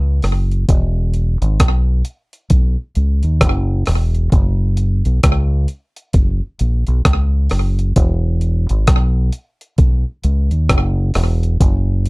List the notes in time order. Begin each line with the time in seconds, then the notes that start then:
Already playing: C#2
0.22 F#1, cross-stick, open hi-hat
0.51 closed hi-hat
0.69 E1, kick, closed hi-hat
1.14 closed hi-hat
1.41 G#1, closed hi-hat
1.60 B1, kick, cross-stick, closed hi-hat
2.05 closed hi-hat
2.33 closed hi-hat
2.50 B1, kick, closed hi-hat
2.95 C#2, closed hi-hat
3.23 D#2, closed hi-hat
3.41 F#1, kick, cross-stick, closed hi-hat
3.86 E1, cross-stick, open hi-hat
4.15 closed hi-hat
4.32 F#1, kick, closed hi-hat
4.77 closed hi-hat
5.05 B1, closed hi-hat
5.23 C#2, kick, cross-stick, closed hi-hat
5.68 closed hi-hat
5.96 closed hi-hat
6.13 F#1, kick, closed hi-hat
6.59 A#1, closed hi-hat
6.87 B1, closed hi-hat
7.05 C#2, kick, cross-stick, closed hi-hat
7.50 F#1, cross-stick, open hi-hat
7.79 closed hi-hat
7.96 E1, kick, closed hi-hat
8.41 closed hi-hat
8.69 G#1, closed hi-hat
8.87 B1, kick, cross-stick, closed hi-hat
9.32 closed hi-hat
9.61 closed hi-hat
9.78 B1, kick, closed hi-hat
10.24 C#2, closed hi-hat
10.51 D#2, closed hi-hat
10.69 F#1, kick, cross-stick, closed hi-hat
11.14 E1, cross-stick, open hi-hat
11.43 closed hi-hat
11.61 F#1, kick, closed hi-hat
12.06 closed hi-hat